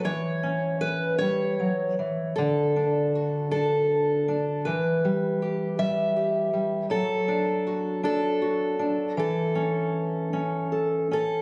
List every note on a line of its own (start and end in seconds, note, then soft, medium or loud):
0.04 1.98 E3 medium
0.04 0.81 C#5 medium
0.43 1.20 C#4 medium
0.81 1.18 B4 medium
1.18 1.59 G3 medium
1.18 2.35 C#5 medium
1.59 1.98 F#3 medium
1.99 2.37 E3 medium
2.36 4.66 D3 medium
2.36 3.50 A4 medium
2.76 3.50 D4 medium
3.15 4.62 F#4 soft
3.51 4.27 D4 medium
3.51 4.65 A4 medium
4.28 4.61 D4 medium
4.65 6.86 E3 medium
4.65 6.52 B4 medium
5.05 5.78 G3 medium
5.42 6.15 G4 soft
5.79 6.52 G3 medium
5.79 6.90 E5 loud
6.16 6.86 G4 soft
6.53 6.90 G3 medium
6.90 9.12 F#3 medium
6.90 8.03 A4 medium
7.28 8.02 D4 medium
7.67 8.41 F#4 soft
8.03 8.78 D4 medium
8.03 9.18 A4 medium
8.42 9.13 F#4 soft
8.79 9.12 D4 medium
9.17 11.42 E3 medium
9.17 10.71 A4 medium
9.55 10.32 C#4 medium
10.33 11.10 C#4 medium
10.72 11.12 A4 soft
11.11 11.42 C#4 medium
11.11 11.42 A4 medium